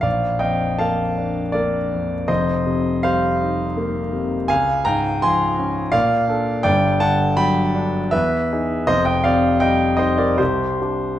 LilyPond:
<<
  \new Staff \with { instrumentName = "Grand piano" } { \time 3/4 \key bes \major \tempo 4 = 81 <d'' f''>8 <ees'' g''>8 <f'' a''>4 <bes' d''>4 | <c'' ees''>4 <c'' f''>2 | <f'' aes''>8 <g'' bes''>8 <aes'' c'''>4 <d'' f''>4 | <d'' g''>8 <fis'' a''>8 <g'' b''>4 <b' e''>4 |
<c'' ees''>16 <ees'' g''>16 <d'' f''>8 <ees'' g''>8 <c'' ees''>16 <bes' d''>16 <g' c''>4 | }
  \new Staff \with { instrumentName = "Grand piano" } { \clef bass \time 3/4 \key bes \major bes,,8 f,8 bes8 d'8 bes8 f,8 | <f,, f,>8 c8 g8 ees'8 bes8 c8 | des,8 aes,8 f8 des'8 bes,8 <d' a'>8 | <g,, g,>8 d8 fis8 d'8 e,8 <dis' gis'>8 |
<f,, f,>8 c8 g8 ees'8 c,8 <d' g'>8 | }
>>